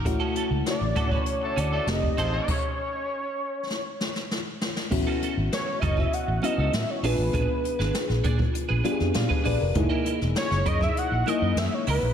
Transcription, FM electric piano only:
0.05 A3 C#4 E4 F#4
0.66 C#3 A3 E4 F#4
1.87 A3 C4 D#4 G4
4.91 B3 C#4 E4 F#4
6.43 B3 C#4 E4 F#4
7.03 B3 D4 F4 G#4
8.84 B3 D4 F4 G4
8.92 G#4
9.15 D5 F5
9.46 B4 D5
9.61 A#4
9.76 G#3 D#4 E4 G#4
9.82 A#3
11.26 A#3 D#4 E4 G#4

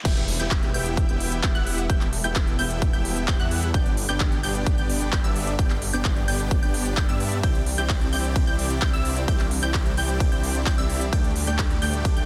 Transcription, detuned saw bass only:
0.05 E1
0.40 E1
0.74 E1
1.09 E1
1.43 E1
1.55 E1
1.90 E1
2.24 E1
2.59 E1
2.93 E1
3.28 E1
3.40 E2
3.74 G1
4.09 G1
4.43 G1
4.78 G1
5.13 G1
5.24 G1
5.59 G1
5.93 G1
6.28 G1
6.63 G1
6.97 G1
7.09 G2
7.43 C2
7.78 C2
8.13 C2
8.47 C2
8.82 C2
8.93 C2
9.28 C2
9.63 C2
9.97 C2
10.32 C2
10.66 C2
10.78 C2
11.13 D2
11.47 D2
11.82 D2
12.17 D2

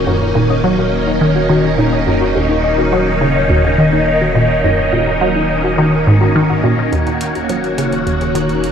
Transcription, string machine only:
Already playing: D#3 A#3 C#4 D#4
6.93 D#3 A#3 C#4 F#4

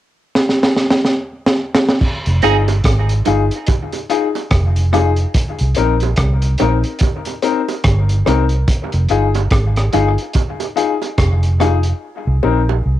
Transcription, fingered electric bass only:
2.27 F1
2.44 G1
2.85 G#1
3.27 G1
4.52 F1
5.61 C2
5.78 A#1
6.18 C2
6.61 A#1
7.85 G1
8.27 C2
8.94 F1
9.11 G1
9.52 G#1
9.94 G1
11.19 F1
12.27 C2
12.44 A#1
12.86 C2

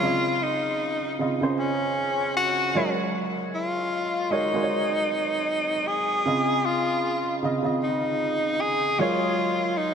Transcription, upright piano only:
0.03 C#3 C4 F4 D#5
1.19 C#3 C4 F4 D#5
1.41 C#3 C#4 F4 C5
2.75 F#3 G#3 A#4 C#5
4.30 G#3 F#4 A#4 C#5
4.54 G#3 F#4 A#4 C5
4.63 C#5
6.26 C#3 C4 F4 D#5
7.43 C#3 C4 F4 D#5
7.63 C#3 C4 F4 D#5
8.99 F#3 G#3 A#4 C#5

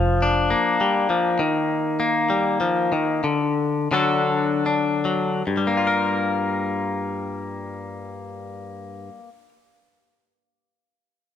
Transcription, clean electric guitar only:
Already playing: F3
0.22 D4
0.50 A#3
0.81 G3
1.10 F3
1.39 D#3
2.00 A#3
2.30 G3
2.61 F3
2.92 D#3
3.24 D3
3.91 D3 F#3 D4 F#4 A4
4.66 D4
5.05 F#3
5.47 G2
5.57 G3
5.67 A#3
5.77 F4
5.87 A#4

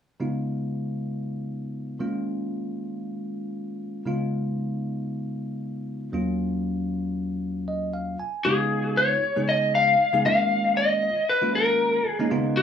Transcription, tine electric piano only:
0.20 C#3 G#3 B3 D#4 F4
1.99 D#3 G#3 A#3 C#4 F4
4.05 C#3 G#3 B3 D#4 F4
6.12 D#2 F#3 A#3 C#4 F4
7.68 D#5
7.94 F5
8.20 G#5
8.45 C#3 G#3 B3 D#4 F4
9.36 C#3 G#3 B3 D#4 G#4
10.13 C#3 G#3 B3 D#4 G#4
10.25 D#3 G#3 A#3 C#4 F4
11.41 D#3 G#3 A#3 C#4 F4
12.19 D#3 G#3 A#3 C#4 D#4
12.30 C#3 G#3 B3 D#4 F4

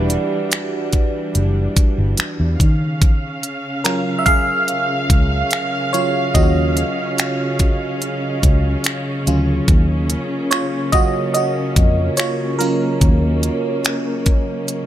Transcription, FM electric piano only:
Already playing: G3 D4 F#4 G4 B4 D5 E5
3.84 F#3 C#4 F4 A#4
4.19 E5
4.26 G#4 F5
5.93 F#3 C#4 F4 C#5
6.34 F#3 C#4 F4 F#4 D#5
9.27 F#3 C#4 F4
10.51 F4 C#5
10.92 F#3 C#4 F4 F#4 D#5
11.34 F#4 D#5
12.17 F4 C#5
12.59 F#3 C#4 F4 A#4

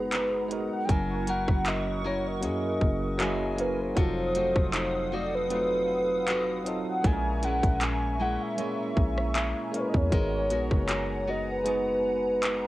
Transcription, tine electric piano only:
Already playing: G#3 B3 D#4 F#4 B4
0.49 G#3 B3 D#4 F#4
0.53 A#4
0.87 F#3 A#3 C#4 E4
0.91 A#4
2.41 F#3 A#3 C#4 E4
2.45 G#4
3.18 F#3 A#3 C#4 E4
3.22 G#4
3.56 F#3 A#3 C#4 E4
3.60 A#4
3.95 F#3 C4 D#4 F4
3.99 A4
5.48 F#3 C4 D#4 F4
5.53 B4
6.64 F#3 C4 D#4 F4
6.68 A4
7.02 G#3 A#3 C#4 E4
7.07 G#4
7.13 A#4
8.56 G#3 A#3 C#4 E4
8.60 C#5
9.72 G#3 A#3 C#4 E4
9.76 A#4
10.10 G#3 B3 D#4 F#4
10.14 A#4
11.64 G#3 B3 D#4 F#4
11.68 G#4

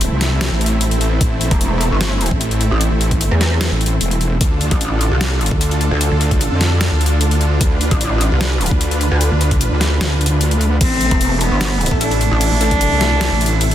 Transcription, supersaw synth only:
Already playing: A3 C4 E4
4.41 D3 D4 F4 A4
7.61 B4
10.81 C3 A3 E4

